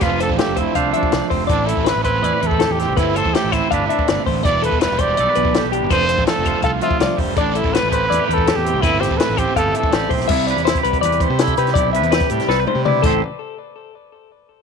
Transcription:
<<
  \new Staff \with { instrumentName = "Clean electric guitar" } { \time 4/4 \key a \minor \tempo 4 = 164 b'8 c''8 a'8 c''8 f''8 e''8 d''8 c''8 | d''8 a'8 b'8 c''8 d''8 b'8 a'8 g'8 | b'8 c''8 a'8 c''8 f''8 e''8 d''8 c''8 | d''8 a'8 b'8 c''8 d''8 b'8 a'8 g'8 |
b'8 c''8 a'8 c''8 f''8 e''8 d''8 c''8 | d''8 a'8 b'8 c''8 d''8 b'8 a'8 g'8 | b'8 c''8 a'8 c''8 f''8 e''8 d''8 c''8 | e''8 d''8 c''8 b'8 d''8 c''8 a'8 b'8 |
d''8 e''8 b'8 g'8 b'8 c''8 d''8 a'8 | r1 | }
  \new Staff \with { instrumentName = "Trumpet" } { \time 4/4 \key a \minor f'8 a'8 g'8 e'8 d'8 d'4 r8 | d'8 e'8 b'8 b'8~ \tuplet 3/2 { b'4 a'8~ a'8 g'4 } | e'8 a'8 g'8 e'8 d'8 d'4 r8 | d''8 b'8 b'8 d''4.~ d''16 r8. |
c''4 a'4 a'8 f'4 r8 | d'8 e'8 b'8 b'8~ \tuplet 3/2 { b'4 a'8~ a'8 g'4 } | e'8 g'8 b'8 g'8 a'8 a'4 r8 | r1 |
r1 | r1 | }
  \new Staff \with { instrumentName = "Clean electric guitar" } { \time 4/4 \key a \minor << { r4. c'8 c''4. c'8~ | c'4. e'16 g'16 e'16 g'8. g'8 c'8~ | c'4. c'8 b'2 | r4. g'8 a'16 b'8. g'8 d'8 |
r4. f'8 f'2 | r4. g'8 e'16 g'8. g'8 c'8~ | c'4. c'8 g'4 g'8 c'8 | e'8 b'8 e'16 g'8. b'4 e'8 g'8 |
e'8 b'8 g'4 a'16 b'8. e'8 <a c' g' c''>8 | r1 | } \\ { f4 a4. f4. | a,4 a4. e4. | a,4 a4. e8 c8 d8 | e4 g4. b,4. |
f4 a4. f8 f8 g8 | a,4 a4. e4. | a,4 a4. e4. | c4. g4 c4. |
c4. g4 c4 a,8 | r1 | } >> }
  \new Staff \with { instrumentName = "Overdriven electric guitar" } { \time 4/4 \key a \minor <f a d' f'>1 | <a, e a c' e'>1 | <a, e a c' e'>1 | <e g b e'>1 |
<f a d' f'>1 | <a, e a c' e'>1 | <a, e a c' e'>1 | r1 |
r1 | r1 | }
  \new Staff \with { instrumentName = "Fingered electric bass" } { \clef bass \time 4/4 \key a \minor f,,8. a,,16 r16 f,,8 r16 c,8 r8 c,16 r16 f,,8 | a,,8. a,,8 a,,8. e,16 r16 e,8. e,8 c,16 | g,,8. e,16 r16 a,,8 r16 g,,8 r8 g,,16 r16 a,,8 | e,,8. e,,8 e,,8. b,,16 r16 b,,8. b,,8 g,,16 |
f,,8. a,,16 r16 f,,8 r16 c,8 r8 c,16 r16 f,,8 | a,,8. a,,8 a,,8. e,16 r16 e,8. e,8 c,16 | g,,8. e,16 r16 a,,8 r16 g,,8 r8 a,,8 b,,8 | c,8. e,8 r16 c,8 e,8. c8. c8 |
b,,8. e,8 r16 a,16 r16 c,8 r16 c8. a,,8 | r1 | }
  \new DrumStaff \with { instrumentName = "Drums" } \drummode { \time 4/4 <hh bd>8 hh16 bd16 <hh sn>8 <hh bd>8 <hh bd>8 hh16 bd16 <hh sn>8 <hho bd>8 | <hh bd>8 hh16 bd16 <hh sn>8 <hh bd>8 hh8 hh16 bd16 <hh sn>8 <hh sn>8 | <hh bd>8 hh16 bd16 <hh sn>8 <hh bd sn>8 <hh bd>8 hh16 bd16 <hh sn>8 <hho bd>8 | <hh bd>8 hh16 bd16 <hh sn>16 sn16 <hh bd>8 hh8 hh16 bd16 <hh sn>8 hh8 |
<hh bd>8 hh16 bd16 <hh sn>8 <hh bd>8 <hh bd>8 hh16 bd16 <hh sn>8 <hho bd>8 | <hh bd>8 hh16 bd16 <hh sn>8 <hh bd>8 hh8 hh16 bd16 <hh sn>8 hh8 | <hh bd>8 <hh sn>16 bd16 <hh sn>8 <hh bd>8 <hh bd>8 hh16 bd16 <hh sn>8 <hho bd>16 sn16 | <cymc bd>8 hh16 hh16 <hh sn>16 <hh bd>16 hh16 <hh bd>16 hh16 hh16 <hh bd>8 <hh sn>16 <hh bd>16 hh16 <hh sn>16 |
<hh bd>8 hh16 hh16 <hh sn>16 <hh bd sn>16 hh16 <hh sn>16 sn8 tommh8 toml8 <cymc bd>8 | r4 r4 r4 r4 | }
>>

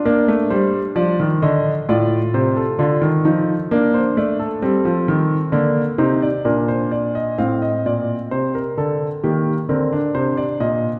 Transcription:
<<
  \new Staff \with { instrumentName = "Grand piano" } { \time 4/4 \key bes \major \tempo 4 = 66 << { bes'8 c''8 d''8 ees''8 d''8 c''16 a'4~ a'16 | bes'16 c''16 d''16 a'4~ a'16 bes'8 c''16 d''16 bes'16 c''16 d''16 ees''16 | f''16 ees''16 d''8 c''16 bes'16 a'8 g'8 bes'8 c''16 d''16 ees''8 | } \\ { d'2 f'4 f'8 ees'8 | d'4 c'4 bes8 ees'8 d'4 | c'2 bes8 c'16 d'4~ d'16 | } >> }
  \new Staff \with { instrumentName = "Grand piano" } { \clef bass \time 4/4 \key bes \major bes16 a16 g8 f16 ees16 d8 a,8 c8 d16 ees16 f8 | bes8 a8 g16 f16 ees8 d8 c8 bes,4 | a,8 bes,8 c8 d8 ees8 d8 c8 bes,8 | }
>>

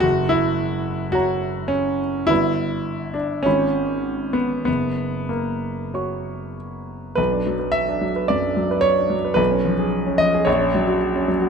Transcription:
\new Staff \with { instrumentName = "Grand piano" } { \time 4/4 \key b \minor \tempo 4 = 106 << { fis'8 e'4. fis'4 cis'8 r8 | e'4. d'8 cis'4. b8 | b4 ais2 r4 | b'4 e''4 d''4 cis''4 |
b'4. dis''8 cis''4. r8 | } \\ { fis,,2 <cis'' ais''>2 | <g,, fis' b' b''>2 <gis,, eis' cis'' b''>2 | fis,,2 <fis' cis'' cis'''>2 | b,,16 d'16 fis16 b'8 d'16 fis16 b'16 fis,16 d'16 fis16 b'8 d'16 fis16 b'16 |
b,,16 cis'16 eis16 gis'8 cis'16 eis16 gis'16 ais,,16 cis'16 fis16 fis'8 cis'16 fis16 fis'16 | } >> }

